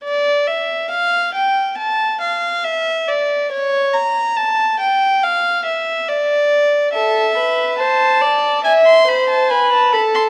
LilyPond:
<<
  \new Staff \with { instrumentName = "Violin" } { \time 4/4 \key a \phrygian \tempo 4 = 70 d''8 e''8 f''8 g''8 a''8 f''8 e''8 d''8 | cis''8 bes''8 a''8 g''8 f''8 e''8 d''4 | e''4 a''4 gis''16 c'''16 b''16 a''16 gis''16 a''16 b''16 c'''16 | }
  \new Staff \with { instrumentName = "Violin" } { \time 4/4 \key a \phrygian r1 | r1 | a'8 b'8 c''8 d''8 e''8 c''8 b'8 a'8 | }
>>